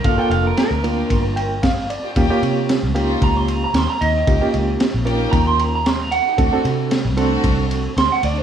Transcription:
<<
  \new Staff \with { instrumentName = "Clean electric guitar" } { \time 4/4 \key ees \lydian \tempo 4 = 114 f''16 g''16 f''16 bes'16 bes'2 r4 | r2 bes''16 c'''16 bes''16 bes''16 c'''16 bes''16 ees''8~ | ees''8 r4. bes''16 c'''16 bes''16 bes''16 c'''16 bes''16 fis''8~ | fis''8 r2 r8 c'''16 fis''16 d''16 c''16 | }
  \new Staff \with { instrumentName = "Reed electric piano" } { \time 4/4 \key ees \lydian << { r2 r8 g''8 f''8 d''8 | r1 | r1 | r1 | } \\ { <bes d' f' a'>16 <bes d' f' a'>8. r8 <bes d' f' bes'>4. r4 | <bes des' f' g'>16 <bes f' g' des''>8. r8 <bes des' f' g'>4. r4 | <bes des' f' g'>16 <bes des' f' g'>8. r8 <bes des' f' bes'>4. r4 | <c' d' fis' a'>16 <c' d' fis' a'>8. r8 <c' d' fis' a'>4. r4 | } >> }
  \new Staff \with { instrumentName = "String section" } { \time 4/4 \key ees \lydian <bes d' f' g'>8. r8. <bes d' f' g'>4 r4 r16 <f' g'>16 | <bes des' ees' g'>8. r8. <bes des' ees' f'>4 r4 r16 <ees' g'>16 | <bes des' ees' g'>8. r8. <bes des' ees' g'>4 r4 r16 <ees' g'>16 | <a c' d' fis'>8. r8. <a c' d' fis'>4 r4 r16 <d' a'>16 | }
  \new Staff \with { instrumentName = "Fingered electric bass" } { \clef bass \time 4/4 \key ees \lydian g,,16 r16 f,,8 r16 d,8. g,,2 | ees,16 r16 c8. des,8. des,4 ees,16 r16 ees,8 | des,16 r16 des,8 r16 bes,,8. ees,2 | d,16 r16 c8. c,8. c,4 d,16 r16 d,8 | }
  \new DrumStaff \with { instrumentName = "Drums" } \drummode { \time 4/4 <bd cymr>8 cymr8 <cymr sn>8 cymr8 <bd cymr>8 cymr8 <bd cymr sn>8 cymr8 | <bd cymr>8 cymr8 <cymr sn>8 cymr8 <bd cymr>8 cymr8 <cymr sn>8 cymr8 | <bd cymr>8 cymr8 <cymr sn>8 cymr8 <bd cymr>8 cymr8 <cymr sn>8 cymr8 | <bd cymr>8 cymr8 <cymr sn>8 cymr8 <bd cymr>8 cymr8 <cymr sn>8 cymr8 | }
>>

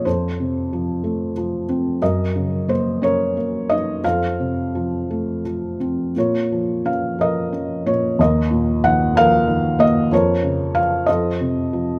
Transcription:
<<
  \new Staff \with { instrumentName = "Felt piano" } { \time 6/8 \key bes \minor \tempo 4. = 61 << { c''2 r4 | ees''4 c''8 des''4 ees''8 | f''2 r4 | des''4 f''8 ees''4 des''8 |
ees''4 ges''8 f''4 ees''8 | des''4 f''8 ees''4. | } \\ { <f' a'>2 r4 | bes'4. bes'4. | <a' c''>2 r4 | <f' bes'>4. bes'4. |
bes'4. bes'4. | <f' bes'>4. <a' c''>4. | } >> }
  \new Staff \with { instrumentName = "Felt piano" } { \clef bass \time 6/8 \key bes \minor f,8 c8 f8 a8 f8 c'8 | ges,8 des8 bes8 des'8 bes8 ees'8 | f,8 c8 f8 a8 f8 c'8 | bes,8 f8 des'8 f8 des'8 bes,8 |
ees,8 bes,8 ees8 f8 ees8 bes8 | f,8 des8 f8 f,8 c8 f8 | }
>>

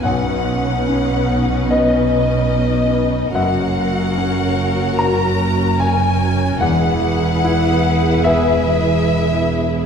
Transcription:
<<
  \new Staff \with { instrumentName = "Violin section" } { \time 4/4 \key b \major \tempo 4 = 73 fis''2 dis''2 | fis''2 ais''4 gis''4 | fis''2 e''2 | }
  \new Staff \with { instrumentName = "Violin section" } { \time 4/4 \key b \major b'1 | ais'1 | b'1 | }
  \new Staff \with { instrumentName = "Grand piano" } { \time 4/4 \key b \major << { fis''2 dis''2 | fis''2 ais''4 gis''4 | fis''2 e''2 | } \\ { b,,4 cis'4 <dis' b'>2 | fis,4 cis'4 <fis' ais'>2 | e,4 e'4 <gis' b'>2 | } >> }
  \new Staff \with { instrumentName = "Viola section" } { \time 4/4 \key b \major <cis' dis'>1 | <cis' fis'>1 | <e' gis'>1 | }
  \new Staff \with { instrumentName = "Cello section" } { \clef bass \time 4/4 \key b \major b,1 | fis,1 | e,1 | }
  \new Staff \with { instrumentName = "Double bass section" } { \clef bass \time 4/4 \key b \major b,,1 | fis,,1 | e,,1 | }
>>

